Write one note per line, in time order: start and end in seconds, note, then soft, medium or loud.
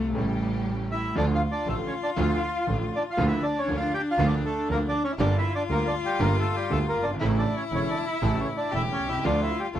0.00 0.20 A3 loud
0.00 0.10 F4 medium
0.13 1.11 A1 medium
0.13 1.12 A1 medium
0.13 1.11 A2 medium
0.13 1.10 C#3 medium
0.13 1.11 G3 medium
0.13 1.11 A3 medium
0.13 1.12 A3 medium
0.13 1.11 C#4 medium
0.13 1.12 E4 medium
0.13 1.11 G4 medium
0.19 0.93 G3 medium
0.92 1.16 E4 medium
0.92 1.15 E5 medium
1.15 1.37 D2 medium
1.15 1.37 D3 medium
1.15 1.37 F3 medium
1.15 1.37 A3 medium
1.15 1.37 D4 medium
1.15 1.25 D4 medium
1.15 1.37 F4 medium
1.15 1.38 F4 medium
1.15 1.25 D5 medium
1.19 3.20 F4 medium
1.35 1.42 F4 medium
1.35 1.42 F5 medium
1.52 1.67 D4 medium
1.52 1.68 D5 medium
1.66 1.88 A1 medium
1.66 1.88 A2 medium
1.66 1.88 D3 soft
1.66 1.88 F3 soft
1.66 1.88 A3 soft
1.66 1.76 A3 medium
1.66 1.88 D4 soft
1.66 1.88 F4 medium
1.66 1.88 F4 soft
1.66 1.76 A4 medium
1.87 1.94 C#4 medium
1.87 1.94 C#5 medium
2.03 2.10 D4 medium
2.03 2.10 D5 medium
2.16 2.38 D2 medium
2.16 2.39 D2 medium
2.16 2.39 D3 medium
2.16 2.38 F3 medium
2.16 2.38 A3 medium
2.16 2.39 A3 medium
2.16 2.38 D4 medium
2.16 2.38 F4 medium
2.16 2.39 F4 medium
2.21 2.66 F4 medium
2.21 2.66 F5 medium
2.67 2.89 A1 medium
2.67 2.89 A2 medium
2.67 2.88 D3 soft
2.67 2.89 F3 soft
2.67 2.89 A3 soft
2.67 2.89 D4 soft
2.67 2.89 F4 medium
2.67 2.90 F4 soft
2.96 3.03 D4 medium
2.96 3.03 D5 medium
3.11 3.26 F4 medium
3.11 3.26 F5 medium
3.17 3.39 D2 medium
3.17 3.40 D2 loud
3.17 3.39 D3 medium
3.17 3.39 F3 medium
3.17 3.39 A#3 medium
3.17 3.40 A#3 medium
3.17 5.13 D4 medium
3.17 3.40 D4 medium
3.17 3.39 F4 medium
3.17 3.40 F4 medium
3.27 3.42 E4 medium
3.27 3.44 E5 medium
3.43 3.59 D4 medium
3.43 3.60 D5 medium
3.59 3.75 C#4 medium
3.59 3.77 C#5 medium
3.68 3.89 D2 medium
3.68 3.90 D2 medium
3.68 3.90 D3 medium
3.68 3.90 F3 soft
3.68 3.90 A#3 soft
3.68 3.90 A#3 medium
3.68 3.90 D4 soft
3.68 3.90 F4 medium
3.77 3.93 F4 medium
3.77 3.92 F5 medium
3.94 4.01 G4 medium
3.94 4.02 G5 medium
4.11 4.26 F4 medium
4.11 4.28 F5 loud
4.18 4.40 D2 loud
4.18 4.40 D2 medium
4.18 4.40 D3 medium
4.18 4.40 F3 medium
4.18 4.40 A#3 medium
4.18 4.40 D4 medium
4.18 4.40 F4 medium
4.27 4.36 D4 medium
4.27 4.34 D5 medium
4.45 4.68 A3 medium
4.45 4.68 A4 medium
4.69 4.90 D2 medium
4.69 4.90 D3 medium
4.69 4.90 F3 soft
4.69 4.90 A#3 soft
4.69 4.91 A#3 soft
4.69 4.79 A#3 medium
4.69 4.90 D4 soft
4.69 4.91 F4 medium
4.69 4.78 A#4 loud
4.89 5.03 D4 medium
4.89 5.03 D5 medium
5.04 5.12 C#4 medium
5.04 5.11 C#5 medium
5.12 5.19 E4 medium
5.18 5.40 G1 loud
5.18 5.41 G1 medium
5.18 5.41 G2 loud
5.18 5.40 D3 medium
5.18 5.41 G3 medium
5.18 5.40 A#3 medium
5.18 5.41 A#3 medium
5.18 5.40 D4 medium
5.18 5.36 D4 medium
5.18 7.21 F4 loud
5.18 5.40 G4 medium
5.18 5.41 G4 medium
5.18 5.37 D5 medium
5.38 5.53 E4 medium
5.38 5.53 E5 medium
5.55 5.63 D4 medium
5.55 5.62 D5 medium
5.69 5.90 D2 medium
5.69 5.91 D3 medium
5.69 5.91 G3 soft
5.69 5.91 A#3 soft
5.69 5.87 A#3 medium
5.69 5.91 D4 soft
5.69 5.91 G4 medium
5.69 5.88 A#4 medium
5.87 5.95 D4 medium
5.87 5.95 D5 medium
6.05 6.20 G3 medium
6.05 6.22 G4 medium
6.19 6.41 G1 medium
6.19 6.41 G2 medium
6.19 6.41 D3 medium
6.19 6.41 G3 medium
6.19 6.41 A#3 medium
6.19 6.41 D4 medium
6.19 6.41 G4 medium
6.19 6.37 A#4 medium
6.23 6.37 A#3 medium
6.39 6.54 A3 medium
6.39 6.55 A4 medium
6.56 6.70 G3 medium
6.56 6.72 G4 medium
6.70 6.92 D2 medium
6.70 6.91 D3 medium
6.70 6.91 G3 soft
6.70 6.79 A3 medium
6.70 6.92 A#3 soft
6.70 6.92 D4 soft
6.70 6.92 G4 medium
6.70 6.78 A4 medium
6.89 7.04 A#3 medium
6.89 7.05 A#4 medium
6.96 7.20 G1 medium
7.02 7.08 F#1 medium
7.02 7.11 D4 medium
7.02 7.11 D5 medium
7.08 7.15 G1 medium
7.14 7.21 G#1 medium
7.20 7.42 A1 medium
7.20 7.42 A1 loud
7.20 7.42 A2 medium
7.20 7.42 C#3 medium
7.20 7.42 E3 medium
7.20 7.42 A3 medium
7.20 7.42 C#4 medium
7.20 8.73 E4 loud
7.20 7.28 E4 medium
7.20 7.42 E4 medium
7.20 7.28 E5 medium
7.38 7.54 D4 medium
7.38 7.56 D5 medium
7.56 7.64 C#4 medium
7.56 7.64 C#5 medium
7.71 7.93 E1 medium
7.71 7.93 E2 medium
7.71 7.92 C#3 soft
7.71 7.93 E3 soft
7.71 7.93 A3 soft
7.71 7.93 C#4 soft
7.71 7.93 E4 medium
7.75 7.89 C#4 medium
7.75 7.89 C#5 medium
7.90 8.05 D4 medium
7.90 8.05 D5 medium
8.07 8.22 E4 medium
8.07 8.23 E5 medium
8.22 8.44 A1 medium
8.22 8.44 A2 medium
8.22 8.43 C#3 medium
8.22 8.43 E3 medium
8.22 8.44 A3 medium
8.22 8.39 A3 medium
8.22 8.44 C#4 medium
8.22 8.44 E4 medium
8.22 8.41 A4 medium
8.40 8.47 C#4 medium
8.40 8.48 C#5 medium
8.57 8.72 D4 medium
8.57 8.74 D5 medium
8.72 8.94 E1 medium
8.72 8.95 E1 medium
8.72 8.94 E2 medium
8.72 8.94 C#3 soft
8.72 8.94 E3 soft
8.72 8.94 A3 soft
8.72 8.94 C#4 soft
8.72 8.94 E4 medium
8.72 8.94 E4 soft
8.72 8.82 E4 medium
8.72 9.26 G4 medium
8.72 8.82 E5 medium
8.92 9.07 C#4 medium
8.92 9.09 C#5 medium
9.00 9.24 C2 soft
9.04 9.11 B1 soft
9.09 9.17 C2 medium
9.09 9.24 E4 medium
9.09 9.24 E5 medium
9.17 9.24 C#2 medium
9.24 9.46 D2 medium
9.24 9.46 D3 medium
9.24 9.46 F3 medium
9.24 9.45 A3 medium
9.24 9.45 D4 medium
9.24 9.41 D4 medium
9.24 9.45 F4 medium
9.24 9.74 F4 medium
9.24 9.46 F4 medium
9.24 9.41 D5 medium
9.42 9.57 E4 medium
9.42 9.60 E5 medium
9.59 9.67 G3 medium
9.59 9.67 G4 medium
9.73 9.80 A1 medium
9.73 9.80 A2 medium
9.73 9.80 D3 soft
9.73 9.80 F3 soft
9.73 9.80 A3 soft
9.73 9.80 A3 medium
9.73 9.80 A3 soft
9.73 9.80 D4 soft
9.73 9.80 F4 medium
9.73 9.80 F4 loud
9.73 9.80 F4 medium
9.73 9.80 A4 medium